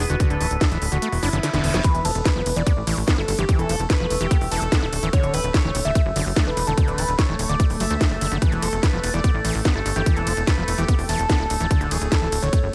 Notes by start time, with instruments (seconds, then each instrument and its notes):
Already playing: synth drone B3 B4
0.10 analog synth bass E1, acid bass D3, analog synth lead F#4, closed hi-hat
0.20 acid bass D3, kick, closed hi-hat
0.30 analog synth bass D1, analog synth lead A4, closed hi-hat
0.41 analog synth bass D1, acid bass E3, open hi-hat
0.51 analog synth bass D1, closed hi-hat
0.61 analog synth lead A4, kick, snare, closed hi-hat
0.71 analog synth bass D1, acid bass E3, closed hi-hat
0.82 analog synth bass D1, open hi-hat
0.92 analog synth bass D1, acid bass D3, analog synth lead F#4, closed hi-hat
1.02 acid bass A3, closed hi-hat, reverse cymbal
1.12 analog synth bass E1, open hi-hat
1.23 analog synth bass F#1, acid bass D4, analog synth lead E4, open hi-hat
1.33 analog synth bass F#1, acid bass D3, closed hi-hat
1.43 acid bass D3, snare, closed hi-hat
1.53 analog synth bass E1, acid bass D3, snare, closed hi-hat
1.64 analog synth bass E1, acid bass D3, open hi-hat
1.74 analog synth bass E1, acid bass F#3, snare, closed hi-hat
1.84 acid bass E3, synth drone A3 A4, analog synth lead B4, kick, closed hi-hat, ride
1.95 analog synth bass E1, closed hi-hat
2.05 analog synth bass E1, acid bass F3, analog synth lead A4, open hi-hat, ride
2.15 analog synth bass E1, closed hi-hat
2.25 analog synth lead B4, kick, snare, closed hi-hat, ride
2.36 analog synth bass E1, acid bass F3
2.46 analog synth bass E1, open hi-hat, ride
2.56 analog synth bass E1, acid bass E3, analog synth lead D5, closed hi-hat
2.67 acid bass B3, kick, closed hi-hat, ride
2.77 analog synth bass A1
2.87 analog synth bass A1, acid bass E3, open hi-hat, ride
2.97 analog synth bass A1, open hi-hat
3.08 acid bass B3, kick, snare, closed hi-hat, ride
3.18 analog synth bass G1, acid bass E4, analog synth lead A4
3.28 analog synth bass G1, open hi-hat, ride
3.38 analog synth bass G1, acid bass E3, analog synth lead G4, closed hi-hat
3.49 acid bass E3, kick, closed hi-hat, ride
3.59 analog synth bass E1, analog synth lead A4, closed hi-hat
3.69 analog synth bass E1, acid bass F3, open hi-hat, ride
3.80 analog synth bass E1, closed hi-hat
3.90 analog synth lead B4, kick, snare, closed hi-hat, ride
4.00 analog synth bass E1, acid bass F3
4.10 analog synth bass E1, open hi-hat, ride
4.21 analog synth bass E1, acid bass E3, analog synth lead G4, closed hi-hat
4.31 acid bass B3, kick, closed hi-hat, ride
4.41 analog synth bass E1, open hi-hat
4.51 analog synth bass E1, acid bass E3, analog synth lead A4, open hi-hat, ride
4.62 analog synth bass E1, closed hi-hat
4.72 acid bass B3, kick, snare, closed hi-hat, ride
4.82 analog synth bass D1, acid bass E4
4.93 analog synth bass D1, open hi-hat, ride
5.03 analog synth bass D1, acid bass E3, closed hi-hat
5.13 acid bass D3, analog synth lead C#5, kick, closed hi-hat, ride
5.23 analog synth bass D1, closed hi-hat
5.34 analog synth bass D1, acid bass E3, analog synth lead B4, open hi-hat, ride
5.44 analog synth bass D1, closed hi-hat
5.54 analog synth lead C#5, kick, snare, closed hi-hat, ride
5.64 analog synth bass D1, acid bass E3
5.75 analog synth bass D1, open hi-hat, ride
5.85 analog synth bass D1, acid bass D3, analog synth lead E5, closed hi-hat
5.95 acid bass A3, kick, closed hi-hat, ride
6.06 analog synth bass F#1
6.16 analog synth bass F#1, acid bass D3, open hi-hat, ride
6.26 analog synth bass F#1, open hi-hat
6.36 acid bass A3, kick, snare, closed hi-hat, ride
6.47 analog synth bass E1, acid bass D4, analog synth lead B4
6.57 analog synth bass E1, open hi-hat, ride
6.67 analog synth bass E1, acid bass D3, analog synth lead A4, closed hi-hat
6.78 acid bass D3, kick, closed hi-hat, ride
6.88 analog synth bass D1, analog synth lead B4, closed hi-hat
6.98 analog synth bass D1, acid bass E3, open hi-hat, ride
7.08 analog synth bass D1, closed hi-hat
7.19 analog synth lead C#5, kick, snare, closed hi-hat, ride
7.29 analog synth bass D1, acid bass E3
7.39 analog synth bass D1, open hi-hat, ride
7.49 analog synth bass D1, acid bass D3, analog synth lead D5, closed hi-hat
7.60 acid bass A3, kick, closed hi-hat, ride
7.70 analog synth bass D1, open hi-hat
7.80 analog synth bass F#1, acid bass F#3, analog synth lead E5, open hi-hat, ride
7.91 analog synth bass D2, acid bass A3, closed hi-hat
8.01 kick, snare, closed hi-hat, ride
8.11 analog synth bass F#1
8.21 analog synth bass F#1, acid bass D3, open hi-hat, ride
8.32 analog synth bass F#1, acid bass D3, closed hi-hat
8.42 acid bass E3, analog synth lead B4, kick, closed hi-hat, ride
8.52 analog synth bass E1, closed hi-hat
8.62 analog synth bass E1, acid bass F3, analog synth lead A4, open hi-hat, ride
8.73 analog synth bass E1, closed hi-hat
8.83 analog synth lead B4, kick, snare, closed hi-hat, ride
8.93 analog synth bass E1, acid bass F3
9.04 analog synth bass E1, open hi-hat, ride
9.14 analog synth bass E1, acid bass E3, analog synth lead D5, closed hi-hat
9.24 acid bass B3, kick, closed hi-hat, ride
9.34 analog synth bass A1
9.45 analog synth bass A1, acid bass E3, open hi-hat, ride
9.55 analog synth bass A1, open hi-hat
9.65 acid bass B3, kick, snare, closed hi-hat, ride
9.75 analog synth bass G1, acid bass E4, analog synth lead A4
9.86 analog synth bass G1, open hi-hat, ride
9.96 analog synth bass G1, acid bass E3, analog synth lead G4, closed hi-hat
10.06 acid bass E3, kick, closed hi-hat, ride
10.16 analog synth bass E1, analog synth lead A4, closed hi-hat
10.27 analog synth bass E1, acid bass F3, open hi-hat, ride
10.37 analog synth bass E1, closed hi-hat
10.47 analog synth lead B4, kick, snare, closed hi-hat, ride
10.58 analog synth bass E1, acid bass F3
10.68 analog synth bass E1, open hi-hat, ride
10.78 analog synth bass E1, acid bass E3, analog synth lead G4, closed hi-hat
10.88 acid bass B3, kick, closed hi-hat, ride
10.99 analog synth bass E1, open hi-hat
11.09 analog synth bass E1, acid bass E3, analog synth lead A4, open hi-hat, ride
11.19 analog synth bass E1, closed hi-hat
11.30 acid bass B3, kick, snare, closed hi-hat, ride
11.40 analog synth bass D1, acid bass E4
11.50 analog synth bass D1, open hi-hat, ride
11.60 analog synth bass D1, acid bass E3, closed hi-hat
11.71 acid bass D3, analog synth lead A4, kick, closed hi-hat, ride
11.81 analog synth bass D1, closed hi-hat
11.91 analog synth bass D1, acid bass E3, analog synth lead G#4, open hi-hat, ride
12.01 analog synth bass D1, closed hi-hat
12.12 analog synth lead A4, kick, snare, closed hi-hat, ride
12.22 analog synth bass D1, acid bass E3
12.32 analog synth bass D1, open hi-hat, ride
12.43 analog synth bass D1, acid bass D3, analog synth lead C#5, closed hi-hat
12.53 acid bass A3, kick, closed hi-hat, ride
12.63 analog synth bass F#1